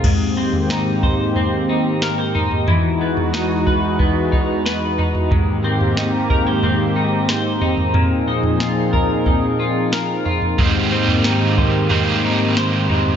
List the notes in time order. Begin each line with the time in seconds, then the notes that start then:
Already playing: D#4 F4 A#4
0.04 G#2 D#3 A#3 C4 G4, kick, floor tom, crash
0.37 C4
0.53 floor tom
0.70 D#4, snare
1.03 C5, kick, floor tom
1.36 C4, floor tom
1.69 D#4
2.02 A#4, snare
2.18 C5
2.35 D#4, floor tom
2.51 floor tom
2.68 E2 E3 G#3 D#4 F#4, floor tom
3.01 B3
3.17 floor tom
3.33 D#4, snare
3.67 B4, kick, floor tom
3.99 B3, kick, floor tom
4.32 D#4, kick
4.66 B4, snare
4.98 D#4, floor tom
5.15 floor tom
5.31 G#2 D#3 A#3 C4 G4, kick, floor tom
5.64 C4
5.81 floor tom
5.97 D#4, snare
6.30 A#4, kick, floor tom
6.47 C5
6.63 C4, floor tom
6.96 D#4
7.29 C5, snare
7.61 D#4, floor tom
7.78 floor tom
7.94 A#2 F3 D#4 G#4, floor tom
8.28 D#4
8.43 floor tom
8.60 F4, snare
8.93 A#4, kick, floor tom
9.26 D#4, kick, floor tom
9.60 F4
9.92 A#4, snare
10.26 F4, floor tom
10.42 floor tom
10.58 G#2 D#3 G3 A#3 C4 D#4 G4 C5, kick, floor tom
10.91 G3 C4 D#4 C5
11.08 floor tom
11.24 D#4, snare
11.58 C5, kick, floor tom
11.89 G#2 D#3 G3 C4, floor tom
11.94 D#4 C5
12.23 D#4
12.57 C5, snare
12.89 D#4, floor tom
13.06 floor tom